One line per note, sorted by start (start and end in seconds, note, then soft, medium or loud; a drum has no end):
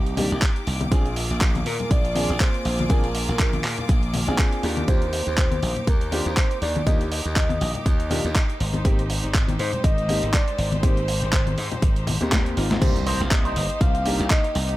0.00 0.26 C2 loud
0.00 8.56 A#3 medium
0.00 0.88 D#4 medium
0.00 0.67 G4 medium
0.00 0.88 G4 medium
0.00 8.56 D6 medium
0.06 closed hi-hat soft
0.17 0.31 A#3 medium
0.17 0.31 D4 medium
0.17 0.32 D#4 medium
0.17 0.32 G4 medium
0.17 open hi-hat loud
0.17 high conga medium
0.17 low conga medium
0.31 0.40 C2 medium
0.31 closed hi-hat soft
0.42 kick loud
0.42 clap loud
0.42 closed hi-hat medium
0.56 closed hi-hat soft
0.67 0.87 C2 medium
0.67 open hi-hat medium
0.81 closed hi-hat soft
0.81 high bongo medium
0.81 high conga medium
0.91 1.25 A#1 medium
0.91 1.06 C4 medium
0.91 1.06 D4 medium
0.91 4.60 F4 medium
0.91 1.06 F4 medium
0.91 4.60 G#4 medium
0.91 1.06 G#4 medium
0.91 kick loud
0.91 closed hi-hat medium
1.06 closed hi-hat soft
1.16 open hi-hat loud
1.30 1.62 A#1 medium
1.30 closed hi-hat soft
1.41 kick loud
1.41 clap loud
1.41 closed hi-hat medium
1.55 closed hi-hat soft
1.55 high conga medium
1.66 1.77 A#2 medium
1.66 1.93 A#4 loud
1.66 open hi-hat medium
1.80 closed hi-hat soft
1.80 low conga medium
1.91 2.24 A#1 loud
1.91 2.42 D5 loud
1.91 kick loud
1.91 closed hi-hat medium
2.05 closed hi-hat soft
2.15 2.29 C4 medium
2.15 2.30 D4 medium
2.15 2.30 F4 medium
2.15 2.30 G#4 medium
2.15 open hi-hat loud
2.15 high conga medium
2.29 2.38 A#1 medium
2.29 closed hi-hat soft
2.40 2.90 C5 loud
2.40 kick loud
2.40 clap loud
2.40 closed hi-hat medium
2.54 closed hi-hat soft
2.65 2.85 A#1 medium
2.65 open hi-hat medium
2.79 closed hi-hat soft
2.79 high conga medium
2.89 3.24 A#1 loud
2.89 3.04 C4 medium
2.89 3.04 D4 medium
2.89 3.04 F4 medium
2.89 3.04 G#4 medium
2.89 3.85 A#4 medium
2.89 kick loud
2.89 closed hi-hat medium
3.04 closed hi-hat soft
3.15 open hi-hat loud
3.28 3.60 A#1 medium
3.28 closed hi-hat soft
3.39 kick loud
3.39 clap loud
3.39 closed hi-hat medium
3.53 closed hi-hat soft
3.53 high conga medium
3.64 3.75 A#2 medium
3.64 clap medium
3.64 open hi-hat medium
3.78 closed hi-hat soft
3.78 low conga medium
3.89 4.23 A#1 loud
3.89 kick loud
3.89 closed hi-hat medium
4.03 closed hi-hat soft
4.14 open hi-hat loud
4.14 high conga medium
4.14 low conga medium
4.27 4.36 A#1 medium
4.27 4.61 C4 medium
4.27 4.61 D4 medium
4.27 4.61 F4 medium
4.27 4.61 G#4 loud
4.27 high bongo medium
4.38 kick loud
4.38 clap loud
4.38 closed hi-hat medium
4.52 closed hi-hat soft
4.63 4.83 D#2 medium
4.63 4.85 A#3 medium
4.63 4.86 D4 medium
4.63 12.78 D#4 medium
4.63 4.86 F4 medium
4.63 12.78 G4 medium
4.63 4.86 G4 medium
4.63 open hi-hat medium
4.77 closed hi-hat soft
4.77 high bongo medium
4.77 high conga medium
4.88 5.22 D#2 loud
4.88 5.02 A#3 medium
4.88 5.02 D4 medium
4.88 5.03 F4 medium
4.88 5.03 G4 medium
4.88 5.89 C5 loud
4.88 kick loud
4.88 closed hi-hat medium
5.02 closed hi-hat soft
5.13 open hi-hat loud
5.27 5.59 D#2 medium
5.27 closed hi-hat soft
5.38 kick loud
5.38 clap loud
5.38 closed hi-hat medium
5.51 closed hi-hat soft
5.51 high conga medium
5.63 5.73 A#1 medium
5.63 open hi-hat medium
5.76 closed hi-hat soft
5.76 low conga medium
5.87 6.21 D#2 loud
5.87 6.12 A#4 medium
5.87 kick loud
5.87 closed hi-hat medium
6.01 closed hi-hat soft
6.12 6.26 A#3 medium
6.12 6.26 D4 medium
6.12 6.26 F4 medium
6.12 6.27 G4 medium
6.12 6.58 C5 loud
6.12 open hi-hat loud
6.12 high conga medium
6.26 6.35 D#2 medium
6.26 closed hi-hat soft
6.37 kick loud
6.37 clap loud
6.37 closed hi-hat medium
6.51 closed hi-hat soft
6.62 6.82 D#2 medium
6.62 6.85 D5 loud
6.62 open hi-hat medium
6.76 closed hi-hat soft
6.76 high conga medium
6.86 7.20 D#2 loud
6.86 7.01 A#3 medium
6.86 7.01 D4 medium
6.86 7.01 F4 medium
6.86 7.01 G4 medium
6.86 6.98 D#5 loud
6.86 kick loud
6.86 closed hi-hat medium
7.01 closed hi-hat soft
7.11 8.56 D#5 loud
7.11 open hi-hat loud
7.25 7.57 D#2 medium
7.25 closed hi-hat soft
7.36 kick loud
7.36 clap loud
7.36 closed hi-hat medium
7.49 closed hi-hat soft
7.49 high conga medium
7.61 7.72 A#1 medium
7.61 open hi-hat medium
7.75 closed hi-hat soft
7.75 low conga medium
7.86 8.20 D#2 loud
7.86 kick loud
7.86 closed hi-hat medium
8.00 closed hi-hat soft
8.10 8.25 A#3 medium
8.10 8.25 D4 medium
8.10 8.25 F4 medium
8.10 8.25 G4 loud
8.10 open hi-hat loud
8.10 high conga medium
8.10 low conga medium
8.25 8.33 D#2 loud
8.35 kick loud
8.35 clap loud
8.35 closed hi-hat medium
8.50 closed hi-hat soft
8.60 8.80 G#1 medium
8.60 12.78 G#3 medium
8.60 12.78 C5 medium
8.60 open hi-hat medium
8.73 closed hi-hat soft
8.73 high bongo soft
8.73 high conga medium
8.85 9.19 G#1 loud
8.85 8.99 A#3 medium
8.85 8.99 C4 medium
8.85 8.99 D#4 medium
8.85 8.99 G4 medium
8.85 kick loud
8.85 closed hi-hat medium
8.99 closed hi-hat soft
9.10 open hi-hat loud
9.24 9.55 G#1 medium
9.24 closed hi-hat soft
9.34 kick loud
9.34 clap loud
9.34 closed hi-hat medium
9.48 closed hi-hat soft
9.48 high conga medium
9.59 9.70 G#2 medium
9.59 9.82 C5 loud
9.59 open hi-hat medium
9.73 closed hi-hat soft
9.73 low conga medium
9.84 10.18 G#1 loud
9.84 10.35 D#5 loud
9.84 kick loud
9.84 closed hi-hat loud
9.98 closed hi-hat soft
10.08 10.23 A#3 medium
10.08 10.23 C4 medium
10.08 10.23 D#4 medium
10.08 10.23 G4 loud
10.08 open hi-hat loud
10.08 high conga medium
10.23 10.31 G#1 loud
10.23 closed hi-hat soft
10.33 10.82 D5 loud
10.33 kick loud
10.33 clap loud
10.33 closed hi-hat loud
10.48 closed hi-hat soft
10.58 10.78 G#1 medium
10.58 open hi-hat medium
10.72 closed hi-hat soft
10.72 high conga medium
10.83 11.17 G#1 loud
10.83 10.97 A#3 medium
10.83 10.97 C4 medium
10.83 10.98 D#4 medium
10.83 10.98 G4 medium
10.83 11.78 C5 medium
10.83 kick loud
10.83 closed hi-hat loud
10.97 closed hi-hat soft
11.08 open hi-hat loud
11.22 11.54 G#1 medium
11.33 kick loud
11.33 clap loud
11.33 closed hi-hat loud
11.47 closed hi-hat soft
11.47 high conga medium
11.58 11.68 G#2 medium
11.58 open hi-hat medium
11.72 closed hi-hat soft
11.72 high bongo medium
11.72 low conga medium
11.82 12.16 G#1 loud
11.82 kick loud
11.82 closed hi-hat medium
11.96 closed hi-hat soft
12.07 open hi-hat loud
12.07 high conga medium
12.07 low conga medium
12.21 12.53 D#2 medium
12.21 12.54 A#3 medium
12.21 12.54 C4 medium
12.21 12.55 D#4 medium
12.21 12.55 G4 loud
12.21 closed hi-hat soft
12.21 high bongo medium
12.32 kick loud
12.32 snare loud
12.32 clap loud
12.32 closed hi-hat loud
12.46 closed hi-hat soft
12.57 12.77 G#1 medium
12.57 12.79 A#3 medium
12.57 12.79 C4 medium
12.57 12.79 D#4 medium
12.57 12.80 F4 loud
12.57 open hi-hat medium
12.71 snare medium
12.71 closed hi-hat soft
12.71 high bongo medium
12.71 high conga medium
12.81 13.15 C2 loud
12.81 12.96 A#3 medium
12.81 14.77 A#3 medium
12.81 12.96 D4 medium
12.81 14.77 D#4 medium
12.81 12.96 D#4 medium
12.81 14.77 G4 medium
12.81 12.96 G4 medium
12.81 13.22 C5 loud
12.81 14.77 C5 medium
12.81 kick loud
12.81 closed hi-hat medium
12.81 crash loud
12.81 impact medium
12.96 closed hi-hat soft
13.06 13.20 D#4 loud
13.06 13.20 G4 loud
13.06 13.20 A#4 loud
13.06 13.20 C5 loud
13.06 open hi-hat loud
13.20 13.52 C2 medium
13.20 closed hi-hat soft
13.25 13.33 F5 medium
13.31 13.82 D#5 loud
13.31 kick loud
13.31 clap loud
13.31 closed hi-hat medium
13.45 13.63 D#4 medium
13.45 13.63 G4 medium
13.45 13.63 A#4 medium
13.45 13.63 C5 loud
13.45 closed hi-hat soft
13.56 13.67 G1 medium
13.56 open hi-hat loud
13.70 closed hi-hat soft
13.81 14.15 C2 loud
13.81 14.32 F5 loud
13.81 muted clean electric guitar stroke soft
13.81 kick loud
13.81 closed hi-hat medium
13.95 closed hi-hat soft
14.05 14.20 A#3 medium
14.05 14.20 D4 medium
14.05 14.20 D#4 medium
14.05 14.20 G4 medium
14.05 open hi-hat loud
14.20 14.28 C2 loud
14.20 closed hi-hat soft
14.30 14.77 D#5 loud
14.30 kick loud
14.30 clap loud
14.30 closed hi-hat medium
14.44 muted clean electric guitar stroke medium
14.44 closed hi-hat soft
14.55 14.75 C2 medium
14.55 muted clean electric guitar stroke loud
14.55 open hi-hat loud
14.69 muted clean electric guitar stroke soft
14.69 closed hi-hat soft